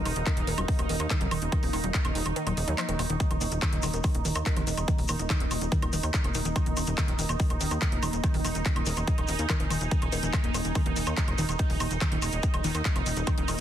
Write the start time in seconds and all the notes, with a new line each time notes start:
Already playing: A#3 D#4 A#4 D#5 D#6
0.05 D#1 D#3, open hi-hat, high woodblock
0.16 D#1, closed hi-hat
0.26 D#3, kick, clap, closed hi-hat, high woodblock
0.37 D#1, closed hi-hat
0.47 D#1 D#3, open hi-hat
0.58 D#1 F#3, closed hi-hat, high woodblock
0.68 D#3, kick, open hi-hat
0.79 D#1, closed hi-hat, high woodblock
0.89 D#1 D#3, open hi-hat
1.00 D#2 C#6, closed hi-hat, high woodblock
1.10 D#3, kick, clap, closed hi-hat
1.21 F1 F#3, closed hi-hat
1.31 D#1 D#3, open hi-hat, high woodblock
1.42 D#1, closed hi-hat
1.52 D#3, kick, closed hi-hat, high woodblock
1.63 D#1, open hi-hat
1.73 D#1 D#3, open hi-hat, high woodblock
1.84 D#1 F#3, closed hi-hat
1.94 D#3, kick, clap, closed hi-hat
2.05 D#1, closed hi-hat, high woodblock
2.15 D#1 D#3, open hi-hat
2.26 D#1, closed hi-hat, high woodblock
2.36 D#3, closed hi-hat
2.47 D#1 F#3, closed hi-hat, high woodblock
2.57 D#1, open hi-hat
2.68 D#2 F#3, closed hi-hat
2.78 F3, clap, closed hi-hat, high woodblock
2.89 D#1 D#3, closed hi-hat
2.99 D#1 A#3, open hi-hat, high woodblock
3.10 D#1 D#3, closed hi-hat
3.20 D#3 D#4, kick, closed hi-hat, shekere
3.31 D#1 D#3, closed hi-hat, high woodblock
3.41 D#1 D#3, open hi-hat, shekere
3.51 D#1, closed hi-hat, shekere
3.62 D#3, kick, clap, closed hi-hat, high woodblock, shekere
3.73 D#1, closed hi-hat
3.83 D#1 D#3, open hi-hat, high woodblock, shekere
3.94 D#1 D#3, closed hi-hat, shekere
4.04 D#3, kick, open hi-hat, high woodblock, shekere
4.15 D#1, closed hi-hat
4.25 D#1 D#3, open hi-hat, shekere
4.35 D#2 D#6, closed hi-hat, high woodblock, shekere
4.46 D#3, kick, clap, closed hi-hat, shekere
4.56 F1 D#3, closed hi-hat, high woodblock
4.67 D#1 D#3, open hi-hat, shekere
4.77 D#1, closed hi-hat, high woodblock, shekere
4.88 D#3, kick, closed hi-hat, shekere
4.98 D#1, open hi-hat
5.08 D#1 D#3, open hi-hat, high woodblock, shekere
5.19 D#1 D#3, closed hi-hat, shekere
5.30 D#3, kick, clap, closed hi-hat, high woodblock, shekere
5.40 D#1, closed hi-hat
5.51 D#1 D#3, open hi-hat, high woodblock, shekere
5.61 D#1, closed hi-hat, shekere
5.72 D#3, kick, closed hi-hat, shekere
5.82 D#1 D#3, closed hi-hat, high woodblock
5.93 D#1 D#3, open hi-hat, shekere
6.03 D#2, closed hi-hat, high woodblock, shekere
6.14 D#3, kick, clap, closed hi-hat, shekere
6.24 F1, closed hi-hat, high woodblock
6.34 D#1 D#3, open hi-hat, shekere
6.45 D#1 D#3, closed hi-hat, shekere
6.56 D#3, kick, closed hi-hat, high woodblock, shekere
6.66 D#1, closed hi-hat
6.77 D#1 D#3, open hi-hat, high woodblock, shekere
6.87 D#1, closed hi-hat, shekere
6.98 D#3, kick, clap, closed hi-hat, high woodblock, shekere
7.08 D#1 D#3, closed hi-hat
7.19 D#1 D#3, open hi-hat, shekere
7.29 D#1, closed hi-hat, high woodblock, shekere
7.40 D#3, kick, open hi-hat, shekere
7.50 D#1, closed hi-hat, high woodblock
7.61 D#1 D#3, open hi-hat, shekere
7.71 D#2 D#3 G#5, closed hi-hat, high woodblock, shekere
7.81 D#3, kick, clap, closed hi-hat, shekere
7.92 F1, closed hi-hat
8.03 D#1 D#3, open hi-hat, high woodblock, shekere
8.13 D#1, closed hi-hat, shekere
8.24 D#3, kick, closed hi-hat, high woodblock, shekere
8.34 D#1 D#3, open hi-hat
8.45 D#1 D#3, open hi-hat, high woodblock, shekere
8.55 D#1, closed hi-hat, shekere
8.66 D#3, kick, clap, closed hi-hat, shekere
8.76 D#1, closed hi-hat, high woodblock
8.86 D#1 D#3, open hi-hat, shekere
8.96 D#1 D#3, closed hi-hat, high woodblock, shekere
9.07 D#3, kick, closed hi-hat, shekere
9.18 D#1, closed hi-hat, high woodblock
9.28 D#1 D#3, open hi-hat, shekere
9.39 D#2, closed hi-hat, shekere
9.49 D#3, kick, clap, closed hi-hat, high woodblock, shekere
9.60 F1 D#3, closed hi-hat
9.70 D#1 D#3, open hi-hat, high woodblock, shekere
9.81 D#1, closed hi-hat, shekere
9.91 D#3, kick, closed hi-hat, shekere
10.02 D#1, closed hi-hat, high woodblock
10.12 D#1 D#3, open hi-hat, shekere
10.23 D#1 D#3, closed hi-hat, shekere
10.33 D#3, kick, clap, closed hi-hat, high woodblock, shekere
10.44 D#1, closed hi-hat
10.54 D#1 D#3, open hi-hat, high woodblock, shekere
10.65 D#1, closed hi-hat, shekere
10.75 D#3, kick, open hi-hat, high woodblock, shekere
10.86 D#1 D#3, closed hi-hat
10.96 D#1 D#3, open hi-hat, shekere
11.06 D#2 D#6, closed hi-hat, high woodblock, shekere
11.17 D#3, kick, clap, closed hi-hat, shekere
11.28 F1, closed hi-hat, high woodblock
11.38 D#1 D#3, open hi-hat, shekere
11.49 D#1 D#3, closed hi-hat, high woodblock, shekere
11.59 D#3, kick, closed hi-hat, shekere
11.70 D#1, open hi-hat
11.80 D#1 D#3, open hi-hat, high woodblock, shekere
11.91 D#1, closed hi-hat, shekere
12.01 D#3, kick, clap, closed hi-hat, high woodblock, shekere
12.12 D#1 D#3, closed hi-hat
12.22 D#1 D#3, open hi-hat, high woodblock, shekere
12.32 D#1, closed hi-hat, shekere
12.43 D#3, kick, closed hi-hat, shekere
12.54 D#1, closed hi-hat, high woodblock
12.64 D#1 D#3, open hi-hat, shekere
12.75 D#2 D#3, closed hi-hat, high woodblock, shekere
12.85 D#3, kick, clap, closed hi-hat, shekere
12.96 F1, closed hi-hat, high woodblock
13.06 D#1 D#3, open hi-hat, shekere
13.17 D#1, closed hi-hat, shekere
13.27 D#3, kick, closed hi-hat, high woodblock, shekere
13.38 D#1 D#3, closed hi-hat
13.48 D#1 D#3, open hi-hat, high woodblock, shekere